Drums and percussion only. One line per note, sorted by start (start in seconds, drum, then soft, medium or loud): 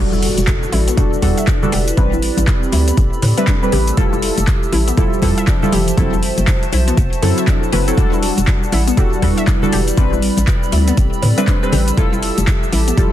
0.12 high conga medium
0.12 shaker soft
0.22 open hi-hat loud
0.38 closed hi-hat medium
0.38 high conga medium
0.38 shaker medium
0.47 kick loud
0.47 clap loud
0.47 closed hi-hat medium
0.47 shaker medium
0.63 shaker soft
0.72 open hi-hat loud
0.72 high conga medium
0.88 closed hi-hat medium
0.88 shaker medium
0.97 kick loud
0.97 closed hi-hat medium
0.97 shaker medium
1.13 shaker soft
1.22 kick medium
1.22 open hi-hat loud
1.22 high conga medium
1.38 closed hi-hat medium
1.38 shaker medium
1.47 kick loud
1.47 clap loud
1.47 closed hi-hat medium
1.47 shaker medium
1.63 low conga medium
1.63 shaker soft
1.72 open hi-hat loud
1.88 closed hi-hat medium
1.88 shaker medium
1.97 kick loud
1.97 closed hi-hat medium
1.97 shaker medium
2.12 high conga medium
2.12 shaker soft
2.22 open hi-hat loud
2.37 closed hi-hat soft
2.37 high conga medium
2.37 shaker medium
2.47 kick loud
2.47 clap loud
2.47 closed hi-hat medium
2.47 shaker medium
2.63 shaker soft
2.72 open hi-hat loud
2.72 high conga medium
2.88 closed hi-hat medium
2.88 shaker medium
2.97 kick loud
2.97 closed hi-hat medium
2.97 shaker medium
3.13 shaker soft
3.22 open hi-hat loud
3.22 low conga medium
3.38 closed hi-hat medium
3.38 shaker medium
3.47 kick loud
3.47 clap loud
3.47 closed hi-hat medium
3.47 shaker medium
3.63 shaker soft
3.72 open hi-hat loud
3.72 low conga medium
3.87 closed hi-hat medium
3.87 shaker medium
3.97 kick loud
3.97 closed hi-hat medium
3.97 shaker medium
4.13 high conga medium
4.13 shaker soft
4.22 open hi-hat loud
4.37 closed hi-hat medium
4.37 high conga medium
4.37 shaker medium
4.47 kick loud
4.47 clap loud
4.47 closed hi-hat medium
4.47 shaker medium
4.63 shaker soft
4.72 open hi-hat loud
4.72 high conga medium
4.88 closed hi-hat medium
4.88 shaker medium
4.97 kick loud
4.97 closed hi-hat medium
4.97 shaker medium
5.13 shaker soft
5.22 kick medium
5.22 open hi-hat loud
5.22 high conga loud
5.38 closed hi-hat medium
5.38 shaker medium
5.47 kick loud
5.47 clap loud
5.47 closed hi-hat medium
5.47 shaker medium
5.62 low conga medium
5.62 shaker soft
5.72 open hi-hat loud
5.88 closed hi-hat medium
5.88 shaker medium
5.97 kick loud
5.97 closed hi-hat medium
5.97 shaker medium
6.13 high conga medium
6.13 shaker soft
6.23 open hi-hat loud
6.37 closed hi-hat soft
6.37 high conga medium
6.37 shaker medium
6.47 kick loud
6.47 clap loud
6.47 closed hi-hat medium
6.47 shaker medium
6.63 closed hi-hat soft
6.63 shaker soft
6.72 open hi-hat loud
6.72 high conga medium
6.88 closed hi-hat medium
6.88 shaker medium
6.97 kick loud
6.97 closed hi-hat medium
6.97 shaker medium
7.13 closed hi-hat soft
7.13 shaker soft
7.22 open hi-hat loud
7.22 low conga medium
7.38 closed hi-hat medium
7.38 shaker medium
7.47 kick loud
7.47 clap loud
7.47 closed hi-hat medium
7.47 shaker medium
7.63 shaker soft
7.73 open hi-hat loud
7.73 low conga medium
7.88 closed hi-hat soft
7.88 shaker medium
7.97 kick loud
7.97 closed hi-hat medium
7.97 shaker medium
8.12 high conga medium
8.12 shaker soft
8.23 open hi-hat loud
8.37 closed hi-hat medium
8.37 high conga medium
8.37 shaker medium
8.47 kick loud
8.47 clap loud
8.47 closed hi-hat medium
8.47 shaker medium
8.63 shaker soft
8.72 open hi-hat loud
8.72 high conga medium
8.88 closed hi-hat medium
8.88 shaker medium
8.97 kick loud
8.97 closed hi-hat medium
8.97 shaker medium
9.13 shaker soft
9.22 kick medium
9.22 open hi-hat loud
9.22 high conga loud
9.38 closed hi-hat medium
9.38 shaker medium
9.47 kick loud
9.47 clap loud
9.47 closed hi-hat medium
9.47 shaker medium
9.62 low conga medium
9.62 shaker soft
9.72 open hi-hat loud
9.88 closed hi-hat medium
9.88 shaker medium
9.97 kick loud
9.97 closed hi-hat medium
9.97 shaker medium
10.13 high conga medium
10.13 shaker soft
10.22 open hi-hat loud
10.37 closed hi-hat soft
10.37 high conga medium
10.37 shaker medium
10.47 kick loud
10.47 clap loud
10.47 closed hi-hat medium
10.47 shaker medium
10.63 shaker soft
10.72 open hi-hat loud
10.72 high conga medium
10.88 closed hi-hat medium
10.88 shaker medium
10.97 kick loud
10.97 closed hi-hat medium
10.97 shaker medium
11.13 shaker soft
11.22 open hi-hat loud
11.22 low conga medium
11.38 closed hi-hat medium
11.38 shaker medium
11.47 kick loud
11.47 clap loud
11.47 closed hi-hat medium
11.47 shaker medium
11.63 shaker soft
11.72 open hi-hat loud
11.72 low conga medium
11.88 closed hi-hat medium
11.88 shaker medium
11.97 kick loud
11.97 closed hi-hat medium
11.97 shaker medium
12.12 high conga medium
12.12 shaker soft
12.22 open hi-hat loud
12.38 closed hi-hat medium
12.38 high conga medium
12.38 shaker medium
12.47 kick loud
12.47 clap loud
12.47 closed hi-hat medium
12.47 shaker medium
12.63 shaker soft
12.72 open hi-hat loud
12.72 high conga medium
12.88 closed hi-hat medium
12.88 shaker medium
12.97 kick loud
12.97 closed hi-hat medium
12.97 shaker medium